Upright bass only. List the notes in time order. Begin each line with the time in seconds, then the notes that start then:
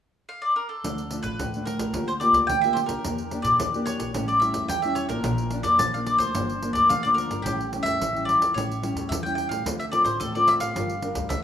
0.84 D2
1.24 A1
1.39 D2
1.78 A1
1.93 D2
2.33 D2
2.48 D2
2.89 D3
3.04 E2
3.44 A#2
3.60 E2
3.99 A#1
4.15 A1
4.54 E2
4.68 E2
5.08 A1
5.24 A#1
5.64 F2
5.79 A#1
6.19 D2
6.34 G1
6.74 D2
6.89 D2
7.30 G1
7.44 A1
7.85 E2
8.00 A1
8.40 E2
8.54 A1
8.95 E2
9.10 E2
9.50 A2
9.65 D2
10.05 A1
10.20 D2
10.60 A1
10.75 G1
11.16 D2
11.30 D2